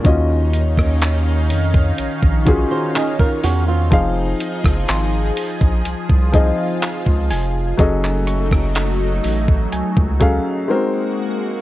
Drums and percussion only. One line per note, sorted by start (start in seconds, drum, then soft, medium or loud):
0.05 kick loud
0.05 closed hi-hat medium
0.53 closed hi-hat medium
0.77 kick medium
0.77 cross-stick loud
1.01 clap loud
1.01 closed hi-hat medium
1.50 closed hi-hat medium
1.50 open hi-hat medium
1.74 kick loud
1.74 closed hi-hat soft
1.98 closed hi-hat medium
2.23 kick loud
2.46 kick loud
2.46 closed hi-hat medium
2.95 clap loud
2.95 closed hi-hat medium
3.19 kick loud
3.43 open hi-hat medium
3.92 kick loud
3.92 closed hi-hat medium
4.40 closed hi-hat medium
4.64 kick loud
4.64 cross-stick loud
4.88 clap loud
4.88 closed hi-hat medium
5.37 closed hi-hat medium
5.37 open hi-hat medium
5.61 kick loud
5.61 closed hi-hat soft
5.85 closed hi-hat medium
6.10 kick loud
6.34 kick loud
6.34 closed hi-hat medium
6.82 clap loud
6.82 closed hi-hat medium
7.06 kick medium
7.31 open hi-hat medium
7.79 kick loud
7.79 closed hi-hat medium
8.05 clap medium
8.27 closed hi-hat medium
8.51 kick medium
8.51 cross-stick loud
8.75 clap loud
8.75 closed hi-hat medium
9.24 open hi-hat medium
9.48 kick loud
9.72 closed hi-hat medium
9.97 kick loud
10.20 kick loud
10.20 closed hi-hat medium